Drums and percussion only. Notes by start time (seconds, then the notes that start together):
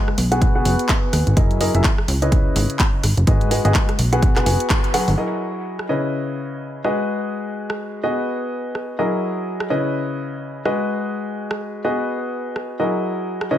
0.08 cross-stick
0.18 open hi-hat
0.32 closed hi-hat
0.42 kick, closed hi-hat
0.65 open hi-hat
0.79 closed hi-hat
0.89 kick, clap, closed hi-hat
1.13 cross-stick, open hi-hat
1.27 closed hi-hat
1.37 kick, closed hi-hat
1.51 closed hi-hat
1.61 open hi-hat
1.75 closed hi-hat
1.84 kick, clap, closed hi-hat
1.98 cross-stick
2.08 open hi-hat
2.22 closed hi-hat
2.32 kick, closed hi-hat
2.56 open hi-hat
2.70 closed hi-hat
2.79 kick, clap, closed hi-hat
3.03 cross-stick, open hi-hat
3.17 closed hi-hat
3.27 kick, closed hi-hat
3.41 closed hi-hat
3.51 open hi-hat
3.65 closed hi-hat
3.75 kick, clap, closed hi-hat
3.89 cross-stick, closed hi-hat
3.99 open hi-hat
4.13 closed hi-hat
4.22 kick, closed hi-hat
4.36 cross-stick, clap, closed hi-hat
4.46 open hi-hat
4.60 closed hi-hat
4.70 kick, clap, closed hi-hat
4.84 closed hi-hat
4.94 cross-stick, open hi-hat
5.08 open hi-hat
5.79 cross-stick
6.84 cross-stick
7.70 cross-stick
8.75 cross-stick
9.60 cross-stick
10.65 cross-stick
11.51 cross-stick
12.56 cross-stick
13.41 cross-stick